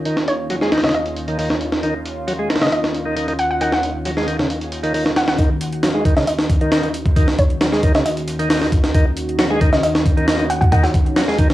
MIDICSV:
0, 0, Header, 1, 5, 480
1, 0, Start_track
1, 0, Key_signature, -6, "minor"
1, 0, Tempo, 444444
1, 62, Time_signature, 4, 2, 24, 8
1, 12462, End_track
2, 0, Start_track
2, 0, Title_t, "Synth pluck"
2, 0, Program_c, 0, 84
2, 303, Note_on_c, 0, 73, 88
2, 881, Note_off_c, 0, 73, 0
2, 908, Note_on_c, 0, 75, 83
2, 981, Note_off_c, 0, 75, 0
2, 1021, Note_on_c, 0, 75, 74
2, 1101, Note_off_c, 0, 75, 0
2, 2826, Note_on_c, 0, 75, 80
2, 2900, Note_off_c, 0, 75, 0
2, 2942, Note_on_c, 0, 75, 74
2, 3021, Note_off_c, 0, 75, 0
2, 3663, Note_on_c, 0, 78, 87
2, 3741, Note_off_c, 0, 78, 0
2, 3787, Note_on_c, 0, 78, 75
2, 3861, Note_off_c, 0, 78, 0
2, 3905, Note_on_c, 0, 78, 87
2, 3982, Note_off_c, 0, 78, 0
2, 4033, Note_on_c, 0, 78, 70
2, 4103, Note_off_c, 0, 78, 0
2, 5582, Note_on_c, 0, 78, 88
2, 5661, Note_off_c, 0, 78, 0
2, 5706, Note_on_c, 0, 78, 75
2, 5780, Note_off_c, 0, 78, 0
2, 6660, Note_on_c, 0, 75, 83
2, 6737, Note_off_c, 0, 75, 0
2, 6777, Note_on_c, 0, 75, 74
2, 6858, Note_off_c, 0, 75, 0
2, 7979, Note_on_c, 0, 73, 88
2, 8559, Note_off_c, 0, 73, 0
2, 8586, Note_on_c, 0, 75, 83
2, 8660, Note_off_c, 0, 75, 0
2, 8701, Note_on_c, 0, 75, 76
2, 8780, Note_off_c, 0, 75, 0
2, 10504, Note_on_c, 0, 75, 83
2, 10579, Note_off_c, 0, 75, 0
2, 10618, Note_on_c, 0, 75, 76
2, 10699, Note_off_c, 0, 75, 0
2, 11338, Note_on_c, 0, 78, 90
2, 11419, Note_off_c, 0, 78, 0
2, 11457, Note_on_c, 0, 78, 76
2, 11535, Note_off_c, 0, 78, 0
2, 11579, Note_on_c, 0, 78, 84
2, 11659, Note_off_c, 0, 78, 0
2, 11699, Note_on_c, 0, 78, 70
2, 11776, Note_off_c, 0, 78, 0
2, 12462, End_track
3, 0, Start_track
3, 0, Title_t, "Analog synth pad"
3, 0, Program_c, 1, 89
3, 0, Note_on_c, 1, 39, 80
3, 0, Note_on_c, 1, 51, 74
3, 0, Note_on_c, 1, 61, 72
3, 0, Note_on_c, 1, 65, 90
3, 5777, Note_off_c, 1, 39, 0
3, 5777, Note_off_c, 1, 51, 0
3, 5777, Note_off_c, 1, 61, 0
3, 5803, Note_off_c, 1, 65, 0
3, 5815, Note_on_c, 1, 61, 76
3, 5815, Note_on_c, 1, 66, 90
3, 5816, Note_on_c, 1, 39, 82
3, 5816, Note_on_c, 1, 51, 79
3, 12462, Note_off_c, 1, 39, 0
3, 12462, Note_off_c, 1, 51, 0
3, 12462, Note_off_c, 1, 61, 0
3, 12462, Note_off_c, 1, 66, 0
3, 12462, End_track
4, 0, Start_track
4, 0, Title_t, "Tonewheel organ"
4, 0, Program_c, 2, 16
4, 61, Note_on_c, 2, 51, 77
4, 179, Note_off_c, 2, 51, 0
4, 542, Note_on_c, 2, 54, 80
4, 600, Note_off_c, 2, 54, 0
4, 663, Note_on_c, 2, 56, 97
4, 769, Note_off_c, 2, 56, 0
4, 778, Note_on_c, 2, 51, 75
4, 877, Note_off_c, 2, 51, 0
4, 903, Note_on_c, 2, 49, 72
4, 995, Note_off_c, 2, 49, 0
4, 1380, Note_on_c, 2, 51, 74
4, 1486, Note_off_c, 2, 51, 0
4, 1499, Note_on_c, 2, 51, 104
4, 1611, Note_off_c, 2, 51, 0
4, 1624, Note_on_c, 2, 51, 74
4, 1680, Note_off_c, 2, 51, 0
4, 1979, Note_on_c, 2, 51, 76
4, 2098, Note_off_c, 2, 51, 0
4, 2458, Note_on_c, 2, 54, 78
4, 2518, Note_off_c, 2, 54, 0
4, 2581, Note_on_c, 2, 56, 96
4, 2688, Note_off_c, 2, 56, 0
4, 2695, Note_on_c, 2, 51, 74
4, 2795, Note_off_c, 2, 51, 0
4, 2821, Note_on_c, 2, 49, 71
4, 2915, Note_off_c, 2, 49, 0
4, 3299, Note_on_c, 2, 51, 73
4, 3403, Note_off_c, 2, 51, 0
4, 3416, Note_on_c, 2, 51, 102
4, 3530, Note_off_c, 2, 51, 0
4, 3543, Note_on_c, 2, 51, 74
4, 3599, Note_off_c, 2, 51, 0
4, 3897, Note_on_c, 2, 51, 78
4, 4017, Note_off_c, 2, 51, 0
4, 4379, Note_on_c, 2, 54, 78
4, 4439, Note_off_c, 2, 54, 0
4, 4504, Note_on_c, 2, 56, 93
4, 4609, Note_off_c, 2, 56, 0
4, 4618, Note_on_c, 2, 51, 76
4, 4717, Note_off_c, 2, 51, 0
4, 4740, Note_on_c, 2, 49, 69
4, 4834, Note_off_c, 2, 49, 0
4, 5219, Note_on_c, 2, 51, 78
4, 5324, Note_off_c, 2, 51, 0
4, 5337, Note_on_c, 2, 51, 100
4, 5448, Note_off_c, 2, 51, 0
4, 5461, Note_on_c, 2, 51, 75
4, 5518, Note_off_c, 2, 51, 0
4, 5817, Note_on_c, 2, 51, 78
4, 5937, Note_off_c, 2, 51, 0
4, 6297, Note_on_c, 2, 54, 82
4, 6357, Note_off_c, 2, 54, 0
4, 6417, Note_on_c, 2, 56, 99
4, 6526, Note_off_c, 2, 56, 0
4, 6536, Note_on_c, 2, 51, 75
4, 6636, Note_off_c, 2, 51, 0
4, 6660, Note_on_c, 2, 49, 73
4, 6754, Note_off_c, 2, 49, 0
4, 7140, Note_on_c, 2, 51, 76
4, 7246, Note_off_c, 2, 51, 0
4, 7259, Note_on_c, 2, 51, 104
4, 7366, Note_off_c, 2, 51, 0
4, 7379, Note_on_c, 2, 51, 76
4, 7437, Note_off_c, 2, 51, 0
4, 7736, Note_on_c, 2, 51, 80
4, 7856, Note_off_c, 2, 51, 0
4, 8216, Note_on_c, 2, 54, 80
4, 8277, Note_off_c, 2, 54, 0
4, 8342, Note_on_c, 2, 56, 96
4, 8448, Note_off_c, 2, 56, 0
4, 8459, Note_on_c, 2, 51, 77
4, 8558, Note_off_c, 2, 51, 0
4, 8583, Note_on_c, 2, 49, 73
4, 8676, Note_off_c, 2, 49, 0
4, 9064, Note_on_c, 2, 51, 76
4, 9168, Note_off_c, 2, 51, 0
4, 9181, Note_on_c, 2, 51, 108
4, 9291, Note_off_c, 2, 51, 0
4, 9304, Note_on_c, 2, 51, 78
4, 9359, Note_off_c, 2, 51, 0
4, 9661, Note_on_c, 2, 51, 80
4, 9779, Note_off_c, 2, 51, 0
4, 10143, Note_on_c, 2, 54, 79
4, 10200, Note_off_c, 2, 54, 0
4, 10266, Note_on_c, 2, 56, 101
4, 10370, Note_off_c, 2, 56, 0
4, 10379, Note_on_c, 2, 51, 76
4, 10478, Note_off_c, 2, 51, 0
4, 10504, Note_on_c, 2, 49, 73
4, 10596, Note_off_c, 2, 49, 0
4, 10982, Note_on_c, 2, 51, 77
4, 11086, Note_off_c, 2, 51, 0
4, 11099, Note_on_c, 2, 51, 103
4, 11208, Note_off_c, 2, 51, 0
4, 11221, Note_on_c, 2, 51, 77
4, 11278, Note_off_c, 2, 51, 0
4, 11577, Note_on_c, 2, 51, 78
4, 11697, Note_off_c, 2, 51, 0
4, 12056, Note_on_c, 2, 54, 79
4, 12117, Note_off_c, 2, 54, 0
4, 12184, Note_on_c, 2, 56, 99
4, 12289, Note_off_c, 2, 56, 0
4, 12299, Note_on_c, 2, 51, 79
4, 12398, Note_off_c, 2, 51, 0
4, 12425, Note_on_c, 2, 49, 73
4, 12462, Note_off_c, 2, 49, 0
4, 12462, End_track
5, 0, Start_track
5, 0, Title_t, "Drums"
5, 59, Note_on_c, 9, 42, 84
5, 167, Note_off_c, 9, 42, 0
5, 182, Note_on_c, 9, 38, 53
5, 290, Note_off_c, 9, 38, 0
5, 300, Note_on_c, 9, 42, 68
5, 408, Note_off_c, 9, 42, 0
5, 540, Note_on_c, 9, 42, 84
5, 648, Note_off_c, 9, 42, 0
5, 663, Note_on_c, 9, 38, 38
5, 771, Note_off_c, 9, 38, 0
5, 778, Note_on_c, 9, 38, 86
5, 778, Note_on_c, 9, 42, 65
5, 841, Note_off_c, 9, 38, 0
5, 841, Note_off_c, 9, 42, 0
5, 841, Note_on_c, 9, 38, 87
5, 841, Note_on_c, 9, 42, 64
5, 903, Note_off_c, 9, 38, 0
5, 903, Note_off_c, 9, 42, 0
5, 903, Note_on_c, 9, 38, 83
5, 903, Note_on_c, 9, 42, 64
5, 962, Note_off_c, 9, 38, 0
5, 962, Note_off_c, 9, 42, 0
5, 962, Note_on_c, 9, 38, 86
5, 962, Note_on_c, 9, 42, 62
5, 1018, Note_off_c, 9, 42, 0
5, 1018, Note_on_c, 9, 42, 81
5, 1070, Note_off_c, 9, 38, 0
5, 1126, Note_off_c, 9, 42, 0
5, 1142, Note_on_c, 9, 42, 42
5, 1250, Note_off_c, 9, 42, 0
5, 1259, Note_on_c, 9, 42, 62
5, 1367, Note_off_c, 9, 42, 0
5, 1382, Note_on_c, 9, 42, 41
5, 1490, Note_off_c, 9, 42, 0
5, 1499, Note_on_c, 9, 46, 74
5, 1607, Note_off_c, 9, 46, 0
5, 1622, Note_on_c, 9, 38, 54
5, 1730, Note_off_c, 9, 38, 0
5, 1737, Note_on_c, 9, 42, 67
5, 1845, Note_off_c, 9, 42, 0
5, 1861, Note_on_c, 9, 38, 54
5, 1969, Note_off_c, 9, 38, 0
5, 1978, Note_on_c, 9, 42, 85
5, 2086, Note_off_c, 9, 42, 0
5, 2219, Note_on_c, 9, 42, 66
5, 2327, Note_off_c, 9, 42, 0
5, 2460, Note_on_c, 9, 42, 87
5, 2568, Note_off_c, 9, 42, 0
5, 2700, Note_on_c, 9, 38, 86
5, 2700, Note_on_c, 9, 42, 63
5, 2761, Note_off_c, 9, 38, 0
5, 2761, Note_off_c, 9, 42, 0
5, 2761, Note_on_c, 9, 38, 83
5, 2761, Note_on_c, 9, 42, 67
5, 2824, Note_off_c, 9, 38, 0
5, 2824, Note_off_c, 9, 42, 0
5, 2824, Note_on_c, 9, 38, 83
5, 2824, Note_on_c, 9, 42, 63
5, 2881, Note_off_c, 9, 38, 0
5, 2881, Note_off_c, 9, 42, 0
5, 2881, Note_on_c, 9, 38, 84
5, 2881, Note_on_c, 9, 42, 65
5, 2940, Note_off_c, 9, 42, 0
5, 2940, Note_on_c, 9, 42, 80
5, 2989, Note_off_c, 9, 38, 0
5, 3048, Note_off_c, 9, 42, 0
5, 3065, Note_on_c, 9, 38, 55
5, 3173, Note_off_c, 9, 38, 0
5, 3180, Note_on_c, 9, 42, 63
5, 3288, Note_off_c, 9, 42, 0
5, 3418, Note_on_c, 9, 42, 83
5, 3526, Note_off_c, 9, 42, 0
5, 3542, Note_on_c, 9, 42, 43
5, 3650, Note_off_c, 9, 42, 0
5, 3658, Note_on_c, 9, 42, 64
5, 3766, Note_off_c, 9, 42, 0
5, 3897, Note_on_c, 9, 42, 82
5, 4005, Note_off_c, 9, 42, 0
5, 4021, Note_on_c, 9, 38, 52
5, 4129, Note_off_c, 9, 38, 0
5, 4137, Note_on_c, 9, 42, 67
5, 4245, Note_off_c, 9, 42, 0
5, 4377, Note_on_c, 9, 42, 85
5, 4485, Note_off_c, 9, 42, 0
5, 4502, Note_on_c, 9, 38, 39
5, 4610, Note_off_c, 9, 38, 0
5, 4619, Note_on_c, 9, 42, 68
5, 4727, Note_off_c, 9, 42, 0
5, 4745, Note_on_c, 9, 38, 54
5, 4853, Note_off_c, 9, 38, 0
5, 4860, Note_on_c, 9, 42, 82
5, 4968, Note_off_c, 9, 42, 0
5, 4983, Note_on_c, 9, 42, 42
5, 5091, Note_off_c, 9, 42, 0
5, 5097, Note_on_c, 9, 42, 65
5, 5205, Note_off_c, 9, 42, 0
5, 5223, Note_on_c, 9, 42, 42
5, 5331, Note_off_c, 9, 42, 0
5, 5338, Note_on_c, 9, 46, 76
5, 5446, Note_off_c, 9, 46, 0
5, 5462, Note_on_c, 9, 38, 54
5, 5570, Note_off_c, 9, 38, 0
5, 5576, Note_on_c, 9, 38, 104
5, 5576, Note_on_c, 9, 42, 78
5, 5684, Note_off_c, 9, 38, 0
5, 5684, Note_off_c, 9, 42, 0
5, 5700, Note_on_c, 9, 38, 100
5, 5700, Note_on_c, 9, 42, 75
5, 5808, Note_off_c, 9, 38, 0
5, 5808, Note_off_c, 9, 42, 0
5, 5815, Note_on_c, 9, 42, 85
5, 5816, Note_on_c, 9, 36, 107
5, 5819, Note_off_c, 9, 42, 0
5, 5819, Note_on_c, 9, 42, 32
5, 5924, Note_off_c, 9, 36, 0
5, 5927, Note_off_c, 9, 42, 0
5, 6057, Note_on_c, 9, 42, 69
5, 6059, Note_off_c, 9, 42, 0
5, 6059, Note_on_c, 9, 42, 76
5, 6167, Note_off_c, 9, 42, 0
5, 6183, Note_on_c, 9, 42, 42
5, 6291, Note_off_c, 9, 42, 0
5, 6297, Note_on_c, 9, 38, 108
5, 6297, Note_on_c, 9, 42, 86
5, 6301, Note_off_c, 9, 42, 0
5, 6301, Note_on_c, 9, 42, 33
5, 6405, Note_off_c, 9, 38, 0
5, 6409, Note_off_c, 9, 42, 0
5, 6537, Note_on_c, 9, 36, 95
5, 6538, Note_on_c, 9, 42, 69
5, 6645, Note_off_c, 9, 36, 0
5, 6646, Note_off_c, 9, 42, 0
5, 6660, Note_on_c, 9, 38, 39
5, 6662, Note_on_c, 9, 42, 42
5, 6768, Note_off_c, 9, 38, 0
5, 6770, Note_off_c, 9, 42, 0
5, 6776, Note_on_c, 9, 42, 84
5, 6777, Note_off_c, 9, 42, 0
5, 6777, Note_on_c, 9, 42, 32
5, 6885, Note_off_c, 9, 42, 0
5, 6898, Note_on_c, 9, 38, 56
5, 7006, Note_off_c, 9, 38, 0
5, 7016, Note_on_c, 9, 36, 91
5, 7017, Note_on_c, 9, 42, 64
5, 7124, Note_off_c, 9, 36, 0
5, 7125, Note_off_c, 9, 42, 0
5, 7141, Note_on_c, 9, 42, 42
5, 7249, Note_off_c, 9, 42, 0
5, 7256, Note_on_c, 9, 38, 113
5, 7256, Note_on_c, 9, 42, 83
5, 7257, Note_off_c, 9, 42, 0
5, 7257, Note_on_c, 9, 42, 33
5, 7364, Note_off_c, 9, 38, 0
5, 7365, Note_off_c, 9, 42, 0
5, 7381, Note_on_c, 9, 42, 43
5, 7489, Note_off_c, 9, 42, 0
5, 7496, Note_on_c, 9, 42, 70
5, 7499, Note_off_c, 9, 42, 0
5, 7499, Note_on_c, 9, 42, 76
5, 7607, Note_off_c, 9, 42, 0
5, 7621, Note_on_c, 9, 36, 91
5, 7621, Note_on_c, 9, 42, 45
5, 7729, Note_off_c, 9, 36, 0
5, 7729, Note_off_c, 9, 42, 0
5, 7736, Note_on_c, 9, 42, 33
5, 7737, Note_on_c, 9, 36, 107
5, 7739, Note_off_c, 9, 42, 0
5, 7739, Note_on_c, 9, 42, 87
5, 7845, Note_off_c, 9, 36, 0
5, 7847, Note_off_c, 9, 42, 0
5, 7862, Note_on_c, 9, 38, 55
5, 7970, Note_off_c, 9, 38, 0
5, 7977, Note_on_c, 9, 42, 75
5, 7978, Note_on_c, 9, 36, 96
5, 7980, Note_off_c, 9, 42, 0
5, 7980, Note_on_c, 9, 42, 71
5, 8086, Note_off_c, 9, 36, 0
5, 8088, Note_off_c, 9, 42, 0
5, 8102, Note_on_c, 9, 42, 43
5, 8210, Note_off_c, 9, 42, 0
5, 8218, Note_on_c, 9, 38, 112
5, 8218, Note_on_c, 9, 42, 88
5, 8219, Note_off_c, 9, 42, 0
5, 8219, Note_on_c, 9, 42, 33
5, 8326, Note_off_c, 9, 38, 0
5, 8327, Note_off_c, 9, 42, 0
5, 8343, Note_on_c, 9, 38, 41
5, 8451, Note_off_c, 9, 38, 0
5, 8457, Note_on_c, 9, 42, 76
5, 8459, Note_off_c, 9, 42, 0
5, 8459, Note_on_c, 9, 36, 93
5, 8459, Note_on_c, 9, 42, 68
5, 8567, Note_off_c, 9, 36, 0
5, 8567, Note_off_c, 9, 42, 0
5, 8583, Note_on_c, 9, 42, 43
5, 8584, Note_on_c, 9, 38, 54
5, 8691, Note_off_c, 9, 42, 0
5, 8692, Note_off_c, 9, 38, 0
5, 8700, Note_on_c, 9, 42, 32
5, 8702, Note_off_c, 9, 42, 0
5, 8702, Note_on_c, 9, 42, 87
5, 8810, Note_off_c, 9, 42, 0
5, 8825, Note_on_c, 9, 42, 42
5, 8933, Note_off_c, 9, 42, 0
5, 8939, Note_on_c, 9, 42, 78
5, 8940, Note_off_c, 9, 42, 0
5, 8940, Note_on_c, 9, 42, 67
5, 9048, Note_off_c, 9, 42, 0
5, 9066, Note_on_c, 9, 42, 43
5, 9067, Note_off_c, 9, 42, 0
5, 9067, Note_on_c, 9, 42, 43
5, 9175, Note_off_c, 9, 42, 0
5, 9181, Note_on_c, 9, 38, 109
5, 9181, Note_on_c, 9, 46, 75
5, 9184, Note_on_c, 9, 42, 32
5, 9289, Note_off_c, 9, 38, 0
5, 9289, Note_off_c, 9, 46, 0
5, 9292, Note_off_c, 9, 42, 0
5, 9304, Note_on_c, 9, 38, 56
5, 9412, Note_off_c, 9, 38, 0
5, 9419, Note_on_c, 9, 42, 68
5, 9420, Note_on_c, 9, 36, 94
5, 9423, Note_off_c, 9, 42, 0
5, 9423, Note_on_c, 9, 42, 76
5, 9528, Note_off_c, 9, 36, 0
5, 9531, Note_off_c, 9, 42, 0
5, 9544, Note_on_c, 9, 38, 54
5, 9549, Note_on_c, 9, 42, 44
5, 9652, Note_off_c, 9, 38, 0
5, 9657, Note_off_c, 9, 42, 0
5, 9660, Note_on_c, 9, 36, 108
5, 9660, Note_on_c, 9, 42, 88
5, 9664, Note_off_c, 9, 42, 0
5, 9664, Note_on_c, 9, 42, 31
5, 9768, Note_off_c, 9, 36, 0
5, 9772, Note_off_c, 9, 42, 0
5, 9899, Note_on_c, 9, 42, 70
5, 9905, Note_off_c, 9, 42, 0
5, 9905, Note_on_c, 9, 42, 72
5, 10013, Note_off_c, 9, 42, 0
5, 10031, Note_on_c, 9, 42, 42
5, 10138, Note_off_c, 9, 42, 0
5, 10138, Note_on_c, 9, 38, 114
5, 10138, Note_on_c, 9, 42, 86
5, 10149, Note_off_c, 9, 42, 0
5, 10149, Note_on_c, 9, 42, 32
5, 10246, Note_off_c, 9, 38, 0
5, 10257, Note_off_c, 9, 42, 0
5, 10379, Note_on_c, 9, 42, 69
5, 10380, Note_on_c, 9, 36, 98
5, 10382, Note_off_c, 9, 42, 0
5, 10382, Note_on_c, 9, 42, 76
5, 10488, Note_off_c, 9, 36, 0
5, 10490, Note_off_c, 9, 42, 0
5, 10506, Note_on_c, 9, 38, 41
5, 10507, Note_on_c, 9, 42, 42
5, 10614, Note_off_c, 9, 38, 0
5, 10615, Note_off_c, 9, 42, 0
5, 10620, Note_on_c, 9, 42, 86
5, 10624, Note_off_c, 9, 42, 0
5, 10624, Note_on_c, 9, 42, 32
5, 10732, Note_off_c, 9, 42, 0
5, 10745, Note_on_c, 9, 38, 57
5, 10853, Note_off_c, 9, 38, 0
5, 10860, Note_on_c, 9, 36, 89
5, 10860, Note_on_c, 9, 42, 64
5, 10862, Note_off_c, 9, 42, 0
5, 10862, Note_on_c, 9, 42, 78
5, 10968, Note_off_c, 9, 36, 0
5, 10970, Note_off_c, 9, 42, 0
5, 10988, Note_on_c, 9, 42, 43
5, 11096, Note_off_c, 9, 42, 0
5, 11099, Note_on_c, 9, 38, 112
5, 11099, Note_on_c, 9, 42, 87
5, 11104, Note_off_c, 9, 42, 0
5, 11104, Note_on_c, 9, 42, 33
5, 11207, Note_off_c, 9, 38, 0
5, 11212, Note_off_c, 9, 42, 0
5, 11222, Note_on_c, 9, 42, 43
5, 11330, Note_off_c, 9, 42, 0
5, 11339, Note_on_c, 9, 42, 69
5, 11346, Note_off_c, 9, 42, 0
5, 11346, Note_on_c, 9, 42, 74
5, 11454, Note_off_c, 9, 42, 0
5, 11463, Note_on_c, 9, 36, 89
5, 11470, Note_on_c, 9, 42, 44
5, 11571, Note_off_c, 9, 36, 0
5, 11578, Note_off_c, 9, 42, 0
5, 11578, Note_on_c, 9, 42, 88
5, 11579, Note_on_c, 9, 36, 108
5, 11586, Note_off_c, 9, 42, 0
5, 11586, Note_on_c, 9, 42, 31
5, 11687, Note_off_c, 9, 36, 0
5, 11694, Note_off_c, 9, 42, 0
5, 11703, Note_on_c, 9, 38, 55
5, 11811, Note_off_c, 9, 38, 0
5, 11816, Note_on_c, 9, 42, 71
5, 11818, Note_on_c, 9, 36, 99
5, 11824, Note_off_c, 9, 42, 0
5, 11824, Note_on_c, 9, 42, 71
5, 11926, Note_off_c, 9, 36, 0
5, 11932, Note_off_c, 9, 42, 0
5, 11948, Note_on_c, 9, 42, 40
5, 12056, Note_off_c, 9, 42, 0
5, 12057, Note_on_c, 9, 38, 120
5, 12057, Note_on_c, 9, 42, 85
5, 12064, Note_off_c, 9, 42, 0
5, 12064, Note_on_c, 9, 42, 32
5, 12165, Note_off_c, 9, 38, 0
5, 12172, Note_off_c, 9, 42, 0
5, 12182, Note_on_c, 9, 38, 41
5, 12290, Note_off_c, 9, 38, 0
5, 12296, Note_on_c, 9, 42, 68
5, 12298, Note_on_c, 9, 36, 95
5, 12302, Note_off_c, 9, 42, 0
5, 12302, Note_on_c, 9, 42, 75
5, 12406, Note_off_c, 9, 36, 0
5, 12410, Note_off_c, 9, 42, 0
5, 12421, Note_on_c, 9, 38, 55
5, 12426, Note_on_c, 9, 42, 41
5, 12462, Note_off_c, 9, 38, 0
5, 12462, Note_off_c, 9, 42, 0
5, 12462, End_track
0, 0, End_of_file